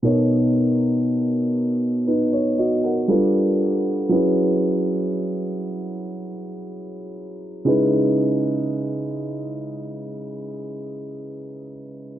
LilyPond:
\new Staff \with { instrumentName = "Grand piano" } { \time 4/4 \key b \major \tempo 4 = 59 << { r2 <dis' b'>16 cis''16 <fis' dis''>16 <ais' fis''>8 r8. | r1 | r1 | } \\ { <b, b dis' ais' cis''>2. <g d' f' a' b'>4 | <fis cis' e' gis' b'>2.~ <fis cis' e' gis' b'>8 <cis gis dis' e' b'>8~ | <cis gis dis' e' b'>2.~ <cis gis dis' e' b'>8 r8 | } >> }